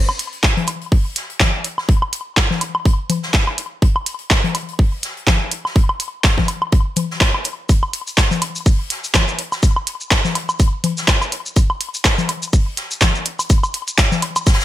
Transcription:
0.09 low woodblock medium
0.19 closed hi-hat medium
0.33 closed hi-hat soft
0.43 kick loud
0.43 snare loud
0.43 clap loud
0.43 closed hi-hat medium
0.57 closed hi-hat soft
0.57 low conga medium
0.67 closed hi-hat medium
0.67 low woodblock medium
0.81 closed hi-hat soft
0.92 kick loud
0.92 open hi-hat medium
1.16 snare soft
1.16 closed hi-hat medium
1.30 closed hi-hat soft
1.40 kick loud
1.40 snare loud
1.40 clap loud
1.40 closed hi-hat medium
1.40 low conga medium
1.64 closed hi-hat medium
1.78 snare soft
1.78 low woodblock medium
1.89 kick loud
1.89 closed hi-hat medium
2.02 low woodblock medium
2.13 closed hi-hat medium
2.37 kick loud
2.37 snare loud
2.37 clap loud
2.37 closed hi-hat medium
2.51 snare soft
2.51 low conga medium
2.61 closed hi-hat loud
2.61 closed hi-hat medium
2.61 low woodblock medium
2.75 low woodblock medium
2.85 kick loud
2.85 closed hi-hat medium
3.10 closed hi-hat loud
3.10 closed hi-hat medium
3.10 low conga medium
3.22 snare medium
3.33 kick loud
3.33 snare loud
3.33 clap loud
3.33 closed hi-hat medium
3.47 low woodblock medium
3.58 closed hi-hat medium
3.82 kick loud
3.82 closed hi-hat medium
3.96 low woodblock medium
4.06 closed hi-hat medium
4.19 closed hi-hat soft
4.30 kick loud
4.30 snare loud
4.30 clap medium
4.30 closed hi-hat medium
4.44 closed hi-hat soft
4.44 low conga medium
4.55 closed hi-hat loud
4.55 closed hi-hat medium
4.55 low woodblock medium
4.69 closed hi-hat soft
4.79 kick loud
4.79 open hi-hat medium
5.03 snare soft
5.03 closed hi-hat medium
5.17 closed hi-hat soft
5.27 kick loud
5.27 snare loud
5.27 clap loud
5.27 closed hi-hat medium
5.27 low conga medium
5.51 closed hi-hat medium
5.65 snare soft
5.65 low woodblock medium
5.76 kick loud
5.76 closed hi-hat medium
5.89 low woodblock medium
6.00 closed hi-hat medium
6.24 kick loud
6.24 snare loud
6.24 clap medium
6.24 closed hi-hat medium
6.38 kick medium
6.38 snare soft
6.38 low conga medium
6.48 closed hi-hat medium
6.48 low woodblock medium
6.62 low woodblock medium
6.72 kick loud
6.72 closed hi-hat medium
6.96 closed hi-hat medium
6.96 closed hi-hat loud
6.96 low conga medium
7.10 snare medium
7.20 kick loud
7.20 snare loud
7.20 clap medium
7.20 closed hi-hat medium
7.34 low woodblock medium
7.44 closed hi-hat medium
7.69 kick loud
7.69 closed hi-hat medium
7.69 shaker soft
7.83 low woodblock medium
7.93 closed hi-hat medium
8.07 closed hi-hat soft
8.07 shaker soft
8.18 kick loud
8.18 snare loud
8.18 clap medium
8.18 closed hi-hat medium
8.18 shaker medium
8.31 closed hi-hat soft
8.31 low conga medium
8.31 shaker soft
8.42 closed hi-hat loud
8.42 closed hi-hat medium
8.42 low woodblock medium
8.55 closed hi-hat soft
8.55 shaker soft
8.66 kick loud
8.66 open hi-hat medium
8.66 shaker soft
8.90 snare soft
8.90 closed hi-hat medium
9.04 closed hi-hat soft
9.04 shaker soft
9.13 kick loud
9.13 snare loud
9.13 clap medium
9.13 closed hi-hat medium
9.13 low conga medium
9.13 shaker medium
9.28 shaker soft
9.39 closed hi-hat medium
9.52 snare soft
9.52 low woodblock medium
9.52 shaker soft
9.63 kick loud
9.63 closed hi-hat medium
9.63 shaker medium
9.76 low woodblock medium
9.87 closed hi-hat medium
10.01 shaker soft
10.11 kick loud
10.11 snare loud
10.11 clap medium
10.11 closed hi-hat medium
10.11 shaker medium
10.25 snare medium
10.25 low conga medium
10.25 shaker soft
10.35 closed hi-hat medium
10.35 low woodblock medium
10.49 low woodblock medium
10.49 shaker soft
10.60 kick loud
10.60 closed hi-hat medium
10.60 shaker medium
10.84 closed hi-hat medium
10.84 low conga medium
10.97 snare medium
10.97 shaker soft
11.08 kick loud
11.08 snare loud
11.08 clap medium
11.08 closed hi-hat medium
11.08 shaker medium
11.22 low woodblock medium
11.22 shaker soft
11.32 closed hi-hat medium
11.46 shaker soft
11.56 kick loud
11.56 closed hi-hat medium
11.56 shaker medium
11.70 low woodblock medium
11.81 closed hi-hat medium
11.94 closed hi-hat soft
11.94 shaker soft
12.04 kick loud
12.04 snare loud
12.04 clap medium
12.04 closed hi-hat medium
12.04 shaker medium
12.18 closed hi-hat soft
12.18 low conga medium
12.18 shaker soft
12.29 closed hi-hat medium
12.29 low woodblock medium
12.42 closed hi-hat soft
12.42 shaker soft
12.53 kick loud
12.53 open hi-hat medium
12.53 shaker medium
12.77 snare medium
12.77 closed hi-hat medium
12.91 closed hi-hat soft
12.91 shaker soft
13.01 kick loud
13.01 snare loud
13.01 clap medium
13.01 closed hi-hat medium
13.01 low conga medium
13.01 shaker medium
13.15 shaker soft
13.25 closed hi-hat medium
13.39 closed hi-hat soft
13.39 low woodblock medium
13.39 shaker soft
13.49 kick loud
13.49 closed hi-hat medium
13.49 shaker medium
13.63 low woodblock medium
13.63 shaker soft
13.74 closed hi-hat medium
13.88 closed hi-hat soft
13.88 shaker soft
13.98 kick loud
13.98 snare loud
13.98 clap loud
13.98 closed hi-hat medium
13.98 shaker medium
14.12 snare medium
14.12 low conga medium
14.12 shaker soft
14.22 closed hi-hat medium
14.22 low woodblock medium
14.36 closed hi-hat soft
14.36 low woodblock medium
14.36 shaker soft
14.46 kick loud
14.46 snare medium
14.46 closed hi-hat medium
14.46 shaker medium
14.53 snare loud
14.53 closed hi-hat medium
14.60 snare loud
14.60 closed hi-hat medium
14.60 shaker soft

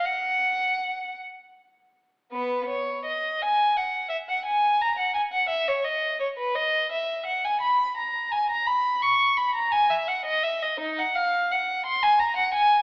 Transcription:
0.05 1.18 F#5 medium
2.32 2.66 B3 medium
2.32 2.66 B4 medium
2.68 3.03 C#5 medium
3.05 3.39 D#5 medium
3.41 3.76 G#5 medium
3.76 4.10 F#5 medium
4.09 4.16 E5 medium
4.28 4.45 F#5 medium
4.45 4.79 G#5 medium
4.81 4.98 A#5 medium
4.98 5.15 F#5 medium
5.14 5.21 G#5 medium
5.33 5.50 F#5 medium
5.49 5.67 E5 medium
5.68 5.85 C#5 medium
5.84 6.20 D#5 medium
6.20 6.27 C#5 medium
6.37 6.55 B4 medium
6.54 6.91 D#5 medium
6.91 7.26 E5 medium
7.26 7.43 F#5 medium
7.44 7.62 G#5 medium
7.61 7.96 B5 medium
7.97 8.31 A#5 medium
8.31 8.49 G#5 medium
8.50 8.67 A#5 medium
8.66 9.02 B5 medium
9.02 9.37 C#6 medium
9.36 9.54 B5 medium
9.55 9.72 A#5 medium
9.71 9.89 G#5 medium
9.90 10.07 E5 medium
10.07 10.25 F#5 medium
10.25 10.43 D#5 medium
10.43 10.61 E5 medium
10.62 10.80 D#5 medium
10.80 10.97 D#4 medium
10.99 11.16 F#5 medium
11.15 11.50 F5 medium
11.51 11.85 F#5 medium
11.86 12.02 C6 medium
12.03 12.19 G#5 medium
12.19 12.36 A#5 medium
12.36 12.53 F#5 medium
12.54 12.82 G#5 medium

